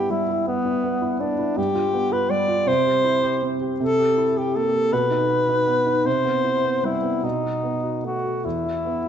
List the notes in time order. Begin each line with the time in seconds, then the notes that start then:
Already playing: G2 B3 E4 G4
0.10 G3 E4
0.28 E4
0.47 B3
0.65 E4
0.84 B3
1.02 E4
1.20 B3 D4
1.38 E4
1.57 G2 G4
1.75 F4
1.93 B3
2.11 F4 B4
2.29 G3 D5
2.48 F4
2.67 C3 C5
2.86 G4
3.04 E4
3.23 G4
3.42 C4
3.61 G4
3.80 C3 A4
3.99 G4
4.17 E4
4.37 G4
4.55 A#3 A4
4.74 G4
4.93 B2 B4
5.11 D#4
5.30 F#4
5.49 D#4
5.67 B3
5.86 D#4
6.05 C3 C5
6.25 B3
6.44 E4
6.64 B3
6.83 G3 E4
7.02 B3
7.23 B2 D#4
7.43 F#4
7.63 B3
7.83 F#4
8.04 A3 F#4
8.24 F#4
8.45 E2 E4
8.64 E4
8.85 B3